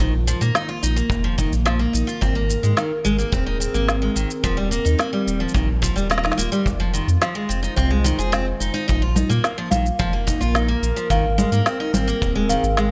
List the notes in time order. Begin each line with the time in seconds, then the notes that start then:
Already playing: D#3 F4 C5
0.00 A#1 D#3, shaker
0.21 A#3
0.27 F3, shaker
0.41 A#2 A#3, shaker
0.55 D#4, snare, shaker
0.69 F4
0.83 A#1 D#4, shaker
0.96 A#3 A#4, shaker
1.10 F1, kick, shaker
1.24 F3
1.38 D#3, kick, shaker
1.52 A#1, shaker
1.66 F3, snare, shaker
1.79 A#3
1.93 A#1 D#4, shaker
2.07 F4, shaker
2.21 G#1 C4, kick, shaker
2.35 A#3
2.49 C4, shaker
2.58 G#4
2.63 G#2 G#3, shaker
2.77 D#3, snare, shaker
3.05 G#1 G#3, shaker
3.18 A#3, shaker
3.32 D#1 C4, kick, shaker
3.46 D#4
3.60 C4, shaker
3.74 G#1 A#3, shaker
3.89 snare, shaker
4.02 G#3
4.16 G#1 D#3, shaker
4.30 shaker
4.44 D#1 F3, kick, shaker
4.57 G3
4.71 A#3, shaker
4.85 D#2 G3 D#4, shaker
4.99 A#3, snare, shaker
5.13 G3
5.27 D#1, shaker
5.40 F3 F4
5.48 shaker
5.54 A#1 D#3, kick, shaker
5.82 F3, kick, shaker
5.96 D#1 G3, shaker
6.10 A#3, snare, shaker
6.18 snare
6.24 D#4, snare
6.32 snare
6.38 D#1 A#3, shaker
6.52 G3, shaker
6.66 F1, kick, shaker
6.80 F3
6.94 D#3, shaker
7.07 F2 G#3, shaker
7.21 F3, snare, shaker
7.28 C5
7.35 G#3
7.49 F1 C4, shaker
7.63 D#4, shaker
7.76 C2 C4, kick, shaker
7.91 G#3
8.04 D#3, shaker
8.19 F1 G#4, shaker
8.32 C4, snare, shaker
8.60 F1 D#4, shaker
8.74 D#4, shaker
8.88 A#1 D#4, kick, shaker
9.02 A#3 F4
9.15 D#4 A#4 G#5, low conga, shaker
9.29 A#2 A#3, shaker
9.44 snare, shaker
9.58 F3
9.71 A#1 D#3 F5, low conga, shaker
9.86 shaker
9.99 F1 F3, kick, shaker
10.13 A#3
10.27 D#4, kick, shaker
10.41 A#1 F4, shaker
10.55 D#4 G#5, snare, shaker
10.68 A#3
10.82 A#1, shaker
10.96 F3, shaker
11.10 G#1 D#3 F5, kick, shaker
11.27 C4
11.38 G#3, low conga, shaker
11.52 G#2 A#3, shaker
11.66 C4, snare, shaker
11.80 D#4 G#4
11.93 G#1 C4 G#5, low conga, shaker
12.08 A#3, shaker
12.22 D#1, kick, shaker
12.35 G#3
12.49 D#3 F5, shaker
12.63 G#1, shaker
12.77 G#3, snare, shaker